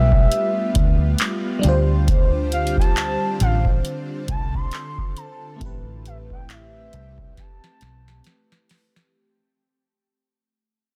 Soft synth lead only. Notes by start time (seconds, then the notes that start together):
Already playing: E5
2.53 F5
2.78 A5
3.41 F5
4.29 A5
4.55 C6
5.17 A5
6.06 E5
6.32 G5
6.50 E5
7.38 A5